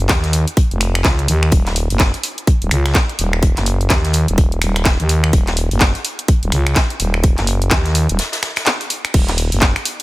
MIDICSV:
0, 0, Header, 1, 3, 480
1, 0, Start_track
1, 0, Key_signature, -6, "minor"
1, 0, Tempo, 476190
1, 1534, Time_signature, 4, 2, 24, 8
1, 10109, End_track
2, 0, Start_track
2, 0, Title_t, "FM bass"
2, 0, Program_c, 0, 39
2, 95, Note_on_c, 0, 39, 94
2, 456, Note_off_c, 0, 39, 0
2, 719, Note_on_c, 0, 29, 97
2, 1039, Note_off_c, 0, 29, 0
2, 1054, Note_on_c, 0, 37, 96
2, 1279, Note_off_c, 0, 37, 0
2, 1294, Note_on_c, 0, 39, 103
2, 1519, Note_off_c, 0, 39, 0
2, 1534, Note_on_c, 0, 27, 96
2, 1895, Note_off_c, 0, 27, 0
2, 1918, Note_on_c, 0, 30, 97
2, 2135, Note_off_c, 0, 30, 0
2, 2638, Note_on_c, 0, 27, 94
2, 2718, Note_off_c, 0, 27, 0
2, 2734, Note_on_c, 0, 37, 99
2, 2959, Note_off_c, 0, 37, 0
2, 3214, Note_on_c, 0, 27, 100
2, 3575, Note_off_c, 0, 27, 0
2, 3598, Note_on_c, 0, 30, 94
2, 3918, Note_off_c, 0, 30, 0
2, 3933, Note_on_c, 0, 39, 97
2, 4295, Note_off_c, 0, 39, 0
2, 4317, Note_on_c, 0, 27, 100
2, 4638, Note_off_c, 0, 27, 0
2, 4653, Note_on_c, 0, 27, 101
2, 5015, Note_off_c, 0, 27, 0
2, 5039, Note_on_c, 0, 39, 99
2, 5359, Note_off_c, 0, 39, 0
2, 5374, Note_on_c, 0, 27, 98
2, 5736, Note_off_c, 0, 27, 0
2, 5758, Note_on_c, 0, 30, 101
2, 5975, Note_off_c, 0, 30, 0
2, 6478, Note_on_c, 0, 27, 102
2, 6558, Note_off_c, 0, 27, 0
2, 6574, Note_on_c, 0, 37, 99
2, 6799, Note_off_c, 0, 37, 0
2, 7053, Note_on_c, 0, 27, 99
2, 7415, Note_off_c, 0, 27, 0
2, 7439, Note_on_c, 0, 30, 95
2, 7759, Note_off_c, 0, 30, 0
2, 7774, Note_on_c, 0, 39, 101
2, 8136, Note_off_c, 0, 39, 0
2, 8160, Note_on_c, 0, 27, 98
2, 8255, Note_off_c, 0, 27, 0
2, 9215, Note_on_c, 0, 27, 96
2, 9576, Note_off_c, 0, 27, 0
2, 9599, Note_on_c, 0, 30, 98
2, 9816, Note_off_c, 0, 30, 0
2, 10109, End_track
3, 0, Start_track
3, 0, Title_t, "Drums"
3, 92, Note_on_c, 9, 39, 125
3, 95, Note_on_c, 9, 36, 127
3, 95, Note_on_c, 9, 38, 115
3, 95, Note_on_c, 9, 42, 82
3, 96, Note_off_c, 9, 42, 0
3, 96, Note_on_c, 9, 42, 97
3, 193, Note_off_c, 9, 39, 0
3, 195, Note_off_c, 9, 36, 0
3, 196, Note_off_c, 9, 38, 0
3, 197, Note_off_c, 9, 42, 0
3, 238, Note_on_c, 9, 38, 41
3, 240, Note_on_c, 9, 42, 34
3, 333, Note_off_c, 9, 42, 0
3, 333, Note_on_c, 9, 42, 67
3, 334, Note_on_c, 9, 46, 109
3, 339, Note_off_c, 9, 38, 0
3, 434, Note_off_c, 9, 42, 0
3, 435, Note_off_c, 9, 46, 0
3, 479, Note_on_c, 9, 42, 54
3, 574, Note_off_c, 9, 42, 0
3, 574, Note_on_c, 9, 36, 127
3, 574, Note_on_c, 9, 42, 78
3, 576, Note_off_c, 9, 42, 0
3, 576, Note_on_c, 9, 42, 85
3, 675, Note_off_c, 9, 36, 0
3, 676, Note_off_c, 9, 42, 0
3, 719, Note_on_c, 9, 42, 34
3, 813, Note_off_c, 9, 42, 0
3, 813, Note_on_c, 9, 42, 66
3, 814, Note_on_c, 9, 26, 62
3, 814, Note_on_c, 9, 46, 112
3, 914, Note_off_c, 9, 42, 0
3, 915, Note_off_c, 9, 26, 0
3, 915, Note_off_c, 9, 46, 0
3, 959, Note_on_c, 9, 26, 78
3, 959, Note_on_c, 9, 42, 51
3, 1052, Note_on_c, 9, 38, 122
3, 1052, Note_on_c, 9, 39, 117
3, 1054, Note_on_c, 9, 36, 120
3, 1055, Note_off_c, 9, 42, 0
3, 1055, Note_on_c, 9, 42, 75
3, 1056, Note_off_c, 9, 42, 0
3, 1056, Note_on_c, 9, 42, 96
3, 1060, Note_off_c, 9, 26, 0
3, 1152, Note_off_c, 9, 38, 0
3, 1153, Note_off_c, 9, 39, 0
3, 1155, Note_off_c, 9, 36, 0
3, 1157, Note_off_c, 9, 42, 0
3, 1199, Note_on_c, 9, 42, 37
3, 1293, Note_off_c, 9, 42, 0
3, 1293, Note_on_c, 9, 42, 64
3, 1294, Note_on_c, 9, 46, 109
3, 1394, Note_off_c, 9, 42, 0
3, 1395, Note_off_c, 9, 46, 0
3, 1439, Note_on_c, 9, 26, 60
3, 1526, Note_on_c, 9, 42, 96
3, 1534, Note_off_c, 9, 42, 0
3, 1534, Note_on_c, 9, 36, 118
3, 1534, Note_on_c, 9, 42, 77
3, 1540, Note_off_c, 9, 26, 0
3, 1635, Note_off_c, 9, 36, 0
3, 1635, Note_off_c, 9, 42, 0
3, 1677, Note_on_c, 9, 39, 35
3, 1680, Note_on_c, 9, 42, 34
3, 1682, Note_on_c, 9, 38, 50
3, 1769, Note_off_c, 9, 42, 0
3, 1769, Note_on_c, 9, 42, 74
3, 1774, Note_on_c, 9, 46, 106
3, 1777, Note_off_c, 9, 39, 0
3, 1783, Note_off_c, 9, 38, 0
3, 1870, Note_off_c, 9, 42, 0
3, 1875, Note_off_c, 9, 46, 0
3, 1915, Note_on_c, 9, 42, 41
3, 1919, Note_off_c, 9, 42, 0
3, 1919, Note_on_c, 9, 42, 36
3, 2006, Note_off_c, 9, 42, 0
3, 2006, Note_on_c, 9, 42, 95
3, 2010, Note_on_c, 9, 39, 122
3, 2013, Note_off_c, 9, 42, 0
3, 2013, Note_on_c, 9, 42, 77
3, 2014, Note_on_c, 9, 36, 123
3, 2018, Note_on_c, 9, 38, 123
3, 2111, Note_off_c, 9, 39, 0
3, 2114, Note_off_c, 9, 36, 0
3, 2114, Note_off_c, 9, 42, 0
3, 2119, Note_off_c, 9, 38, 0
3, 2153, Note_on_c, 9, 42, 44
3, 2158, Note_off_c, 9, 42, 0
3, 2158, Note_on_c, 9, 42, 37
3, 2253, Note_on_c, 9, 46, 106
3, 2254, Note_off_c, 9, 42, 0
3, 2254, Note_on_c, 9, 42, 76
3, 2353, Note_off_c, 9, 46, 0
3, 2355, Note_off_c, 9, 42, 0
3, 2399, Note_on_c, 9, 42, 53
3, 2493, Note_off_c, 9, 42, 0
3, 2493, Note_on_c, 9, 42, 80
3, 2494, Note_on_c, 9, 36, 118
3, 2594, Note_off_c, 9, 36, 0
3, 2594, Note_off_c, 9, 42, 0
3, 2639, Note_on_c, 9, 42, 36
3, 2730, Note_off_c, 9, 42, 0
3, 2730, Note_on_c, 9, 42, 67
3, 2734, Note_on_c, 9, 26, 63
3, 2734, Note_on_c, 9, 46, 107
3, 2831, Note_off_c, 9, 42, 0
3, 2834, Note_off_c, 9, 26, 0
3, 2834, Note_off_c, 9, 46, 0
3, 2879, Note_on_c, 9, 26, 80
3, 2879, Note_on_c, 9, 42, 51
3, 2882, Note_on_c, 9, 38, 47
3, 2968, Note_off_c, 9, 42, 0
3, 2968, Note_on_c, 9, 42, 82
3, 2971, Note_on_c, 9, 39, 117
3, 2974, Note_off_c, 9, 42, 0
3, 2974, Note_on_c, 9, 36, 121
3, 2974, Note_on_c, 9, 42, 77
3, 2978, Note_off_c, 9, 38, 0
3, 2978, Note_on_c, 9, 38, 108
3, 2980, Note_off_c, 9, 26, 0
3, 3072, Note_off_c, 9, 39, 0
3, 3074, Note_off_c, 9, 36, 0
3, 3075, Note_off_c, 9, 42, 0
3, 3079, Note_off_c, 9, 38, 0
3, 3119, Note_on_c, 9, 42, 37
3, 3214, Note_on_c, 9, 46, 104
3, 3215, Note_off_c, 9, 42, 0
3, 3215, Note_on_c, 9, 42, 71
3, 3314, Note_off_c, 9, 46, 0
3, 3316, Note_off_c, 9, 42, 0
3, 3359, Note_on_c, 9, 26, 61
3, 3450, Note_on_c, 9, 42, 95
3, 3453, Note_on_c, 9, 36, 115
3, 3454, Note_off_c, 9, 42, 0
3, 3454, Note_on_c, 9, 42, 78
3, 3460, Note_off_c, 9, 26, 0
3, 3554, Note_off_c, 9, 36, 0
3, 3555, Note_off_c, 9, 42, 0
3, 3595, Note_on_c, 9, 38, 45
3, 3596, Note_on_c, 9, 39, 33
3, 3599, Note_on_c, 9, 42, 37
3, 3688, Note_off_c, 9, 42, 0
3, 3688, Note_on_c, 9, 42, 69
3, 3693, Note_on_c, 9, 46, 101
3, 3696, Note_off_c, 9, 38, 0
3, 3697, Note_off_c, 9, 39, 0
3, 3789, Note_off_c, 9, 42, 0
3, 3794, Note_off_c, 9, 46, 0
3, 3839, Note_on_c, 9, 42, 38
3, 3928, Note_on_c, 9, 38, 127
3, 3931, Note_on_c, 9, 39, 122
3, 3934, Note_off_c, 9, 42, 0
3, 3934, Note_on_c, 9, 36, 116
3, 3934, Note_on_c, 9, 42, 85
3, 3936, Note_off_c, 9, 42, 0
3, 3936, Note_on_c, 9, 42, 97
3, 4029, Note_off_c, 9, 38, 0
3, 4032, Note_off_c, 9, 39, 0
3, 4035, Note_off_c, 9, 36, 0
3, 4037, Note_off_c, 9, 42, 0
3, 4072, Note_on_c, 9, 38, 42
3, 4078, Note_on_c, 9, 42, 37
3, 4164, Note_off_c, 9, 42, 0
3, 4164, Note_on_c, 9, 42, 66
3, 4173, Note_off_c, 9, 38, 0
3, 4173, Note_on_c, 9, 46, 103
3, 4265, Note_off_c, 9, 42, 0
3, 4274, Note_off_c, 9, 46, 0
3, 4318, Note_on_c, 9, 42, 54
3, 4412, Note_off_c, 9, 42, 0
3, 4412, Note_on_c, 9, 42, 88
3, 4414, Note_off_c, 9, 42, 0
3, 4414, Note_on_c, 9, 36, 122
3, 4414, Note_on_c, 9, 42, 82
3, 4514, Note_off_c, 9, 42, 0
3, 4515, Note_off_c, 9, 36, 0
3, 4558, Note_on_c, 9, 42, 38
3, 4650, Note_off_c, 9, 42, 0
3, 4650, Note_on_c, 9, 42, 76
3, 4653, Note_on_c, 9, 26, 66
3, 4653, Note_on_c, 9, 46, 105
3, 4751, Note_off_c, 9, 42, 0
3, 4754, Note_off_c, 9, 26, 0
3, 4754, Note_off_c, 9, 46, 0
3, 4798, Note_on_c, 9, 26, 85
3, 4798, Note_on_c, 9, 42, 54
3, 4890, Note_on_c, 9, 39, 111
3, 4893, Note_off_c, 9, 42, 0
3, 4893, Note_on_c, 9, 42, 81
3, 4894, Note_on_c, 9, 36, 120
3, 4895, Note_off_c, 9, 42, 0
3, 4895, Note_on_c, 9, 38, 118
3, 4895, Note_on_c, 9, 42, 88
3, 4899, Note_off_c, 9, 26, 0
3, 4991, Note_off_c, 9, 39, 0
3, 4995, Note_off_c, 9, 36, 0
3, 4995, Note_off_c, 9, 38, 0
3, 4996, Note_off_c, 9, 42, 0
3, 5038, Note_on_c, 9, 42, 39
3, 5133, Note_off_c, 9, 42, 0
3, 5133, Note_on_c, 9, 42, 70
3, 5134, Note_on_c, 9, 46, 102
3, 5234, Note_off_c, 9, 42, 0
3, 5235, Note_off_c, 9, 46, 0
3, 5279, Note_on_c, 9, 26, 66
3, 5374, Note_on_c, 9, 36, 108
3, 5374, Note_on_c, 9, 42, 82
3, 5380, Note_off_c, 9, 26, 0
3, 5380, Note_off_c, 9, 42, 0
3, 5380, Note_on_c, 9, 42, 94
3, 5475, Note_off_c, 9, 36, 0
3, 5481, Note_off_c, 9, 42, 0
3, 5515, Note_on_c, 9, 39, 36
3, 5516, Note_on_c, 9, 38, 48
3, 5518, Note_on_c, 9, 42, 37
3, 5613, Note_on_c, 9, 46, 100
3, 5616, Note_off_c, 9, 39, 0
3, 5617, Note_off_c, 9, 38, 0
3, 5617, Note_off_c, 9, 42, 0
3, 5617, Note_on_c, 9, 42, 65
3, 5714, Note_off_c, 9, 46, 0
3, 5718, Note_off_c, 9, 42, 0
3, 5759, Note_on_c, 9, 42, 39
3, 5762, Note_off_c, 9, 42, 0
3, 5762, Note_on_c, 9, 42, 43
3, 5851, Note_on_c, 9, 39, 122
3, 5853, Note_off_c, 9, 42, 0
3, 5853, Note_on_c, 9, 38, 117
3, 5853, Note_on_c, 9, 42, 85
3, 5854, Note_on_c, 9, 36, 117
3, 5857, Note_off_c, 9, 42, 0
3, 5857, Note_on_c, 9, 42, 87
3, 5951, Note_off_c, 9, 39, 0
3, 5953, Note_off_c, 9, 38, 0
3, 5955, Note_off_c, 9, 36, 0
3, 5958, Note_off_c, 9, 42, 0
3, 5996, Note_on_c, 9, 42, 41
3, 5999, Note_off_c, 9, 42, 0
3, 5999, Note_on_c, 9, 42, 38
3, 6094, Note_on_c, 9, 46, 99
3, 6096, Note_off_c, 9, 42, 0
3, 6096, Note_on_c, 9, 42, 71
3, 6195, Note_off_c, 9, 46, 0
3, 6197, Note_off_c, 9, 42, 0
3, 6239, Note_on_c, 9, 42, 60
3, 6334, Note_off_c, 9, 42, 0
3, 6334, Note_on_c, 9, 36, 116
3, 6334, Note_on_c, 9, 42, 84
3, 6338, Note_off_c, 9, 42, 0
3, 6338, Note_on_c, 9, 42, 78
3, 6435, Note_off_c, 9, 36, 0
3, 6438, Note_off_c, 9, 42, 0
3, 6479, Note_on_c, 9, 42, 40
3, 6573, Note_on_c, 9, 26, 65
3, 6573, Note_on_c, 9, 46, 108
3, 6580, Note_off_c, 9, 42, 0
3, 6674, Note_off_c, 9, 26, 0
3, 6674, Note_off_c, 9, 46, 0
3, 6719, Note_on_c, 9, 26, 86
3, 6719, Note_on_c, 9, 42, 54
3, 6811, Note_on_c, 9, 39, 118
3, 6813, Note_off_c, 9, 42, 0
3, 6813, Note_on_c, 9, 42, 85
3, 6815, Note_on_c, 9, 36, 115
3, 6817, Note_on_c, 9, 38, 110
3, 6818, Note_off_c, 9, 42, 0
3, 6818, Note_on_c, 9, 42, 91
3, 6820, Note_off_c, 9, 26, 0
3, 6911, Note_off_c, 9, 39, 0
3, 6915, Note_off_c, 9, 36, 0
3, 6918, Note_off_c, 9, 38, 0
3, 6919, Note_off_c, 9, 42, 0
3, 6959, Note_on_c, 9, 42, 41
3, 7054, Note_off_c, 9, 42, 0
3, 7054, Note_on_c, 9, 42, 72
3, 7054, Note_on_c, 9, 46, 98
3, 7155, Note_off_c, 9, 42, 0
3, 7155, Note_off_c, 9, 46, 0
3, 7198, Note_on_c, 9, 26, 68
3, 7293, Note_on_c, 9, 42, 84
3, 7295, Note_on_c, 9, 36, 117
3, 7298, Note_off_c, 9, 26, 0
3, 7394, Note_off_c, 9, 42, 0
3, 7395, Note_off_c, 9, 36, 0
3, 7435, Note_on_c, 9, 39, 37
3, 7438, Note_on_c, 9, 42, 37
3, 7440, Note_on_c, 9, 38, 43
3, 7533, Note_on_c, 9, 46, 104
3, 7536, Note_off_c, 9, 39, 0
3, 7537, Note_off_c, 9, 42, 0
3, 7537, Note_on_c, 9, 42, 72
3, 7541, Note_off_c, 9, 38, 0
3, 7634, Note_off_c, 9, 46, 0
3, 7637, Note_off_c, 9, 42, 0
3, 7678, Note_on_c, 9, 42, 40
3, 7770, Note_off_c, 9, 42, 0
3, 7770, Note_on_c, 9, 39, 126
3, 7770, Note_on_c, 9, 42, 85
3, 7773, Note_off_c, 9, 42, 0
3, 7773, Note_on_c, 9, 42, 91
3, 7774, Note_on_c, 9, 38, 116
3, 7775, Note_on_c, 9, 36, 122
3, 7871, Note_off_c, 9, 39, 0
3, 7874, Note_off_c, 9, 38, 0
3, 7874, Note_off_c, 9, 42, 0
3, 7875, Note_off_c, 9, 36, 0
3, 7919, Note_on_c, 9, 42, 39
3, 7920, Note_on_c, 9, 38, 42
3, 8013, Note_on_c, 9, 46, 106
3, 8015, Note_off_c, 9, 42, 0
3, 8015, Note_on_c, 9, 42, 66
3, 8020, Note_off_c, 9, 38, 0
3, 8114, Note_off_c, 9, 46, 0
3, 8116, Note_off_c, 9, 42, 0
3, 8159, Note_on_c, 9, 42, 60
3, 8254, Note_off_c, 9, 42, 0
3, 8254, Note_on_c, 9, 42, 86
3, 8256, Note_on_c, 9, 38, 98
3, 8260, Note_off_c, 9, 42, 0
3, 8260, Note_on_c, 9, 42, 83
3, 8357, Note_off_c, 9, 38, 0
3, 8361, Note_off_c, 9, 42, 0
3, 8390, Note_on_c, 9, 38, 100
3, 8393, Note_on_c, 9, 42, 74
3, 8399, Note_off_c, 9, 42, 0
3, 8399, Note_on_c, 9, 42, 40
3, 8490, Note_off_c, 9, 42, 0
3, 8490, Note_on_c, 9, 42, 81
3, 8491, Note_off_c, 9, 38, 0
3, 8495, Note_on_c, 9, 26, 67
3, 8495, Note_on_c, 9, 46, 108
3, 8501, Note_on_c, 9, 38, 116
3, 8591, Note_off_c, 9, 42, 0
3, 8595, Note_off_c, 9, 26, 0
3, 8595, Note_off_c, 9, 46, 0
3, 8602, Note_off_c, 9, 38, 0
3, 8628, Note_on_c, 9, 42, 85
3, 8637, Note_on_c, 9, 38, 98
3, 8639, Note_off_c, 9, 42, 0
3, 8639, Note_on_c, 9, 26, 83
3, 8639, Note_on_c, 9, 42, 59
3, 8729, Note_off_c, 9, 42, 0
3, 8729, Note_on_c, 9, 42, 73
3, 8731, Note_on_c, 9, 39, 123
3, 8734, Note_off_c, 9, 42, 0
3, 8734, Note_on_c, 9, 42, 85
3, 8737, Note_off_c, 9, 38, 0
3, 8737, Note_on_c, 9, 38, 113
3, 8740, Note_off_c, 9, 26, 0
3, 8832, Note_off_c, 9, 39, 0
3, 8835, Note_off_c, 9, 42, 0
3, 8838, Note_off_c, 9, 38, 0
3, 8878, Note_on_c, 9, 42, 39
3, 8885, Note_off_c, 9, 42, 0
3, 8885, Note_on_c, 9, 42, 39
3, 8969, Note_off_c, 9, 42, 0
3, 8969, Note_on_c, 9, 42, 67
3, 8974, Note_on_c, 9, 46, 102
3, 9069, Note_off_c, 9, 42, 0
3, 9075, Note_off_c, 9, 46, 0
3, 9119, Note_on_c, 9, 26, 66
3, 9119, Note_on_c, 9, 42, 39
3, 9214, Note_off_c, 9, 42, 0
3, 9214, Note_on_c, 9, 42, 69
3, 9214, Note_on_c, 9, 49, 109
3, 9215, Note_on_c, 9, 36, 117
3, 9220, Note_off_c, 9, 26, 0
3, 9220, Note_off_c, 9, 42, 0
3, 9220, Note_on_c, 9, 42, 85
3, 9315, Note_off_c, 9, 36, 0
3, 9315, Note_off_c, 9, 49, 0
3, 9321, Note_off_c, 9, 42, 0
3, 9350, Note_on_c, 9, 38, 45
3, 9356, Note_on_c, 9, 39, 39
3, 9359, Note_on_c, 9, 42, 38
3, 9450, Note_off_c, 9, 38, 0
3, 9450, Note_off_c, 9, 42, 0
3, 9450, Note_on_c, 9, 42, 74
3, 9454, Note_on_c, 9, 46, 105
3, 9457, Note_off_c, 9, 39, 0
3, 9551, Note_off_c, 9, 42, 0
3, 9555, Note_off_c, 9, 46, 0
3, 9598, Note_on_c, 9, 42, 59
3, 9603, Note_off_c, 9, 42, 0
3, 9603, Note_on_c, 9, 42, 46
3, 9686, Note_on_c, 9, 38, 120
3, 9687, Note_off_c, 9, 42, 0
3, 9687, Note_on_c, 9, 42, 88
3, 9691, Note_on_c, 9, 39, 127
3, 9694, Note_off_c, 9, 42, 0
3, 9694, Note_on_c, 9, 42, 74
3, 9695, Note_on_c, 9, 36, 126
3, 9787, Note_off_c, 9, 38, 0
3, 9792, Note_off_c, 9, 39, 0
3, 9795, Note_off_c, 9, 42, 0
3, 9796, Note_off_c, 9, 36, 0
3, 9834, Note_on_c, 9, 42, 41
3, 9839, Note_off_c, 9, 42, 0
3, 9839, Note_on_c, 9, 26, 65
3, 9839, Note_on_c, 9, 42, 39
3, 9933, Note_on_c, 9, 46, 107
3, 9937, Note_off_c, 9, 42, 0
3, 9937, Note_on_c, 9, 42, 64
3, 9939, Note_off_c, 9, 26, 0
3, 10034, Note_off_c, 9, 46, 0
3, 10038, Note_off_c, 9, 42, 0
3, 10078, Note_on_c, 9, 42, 58
3, 10109, Note_off_c, 9, 42, 0
3, 10109, End_track
0, 0, End_of_file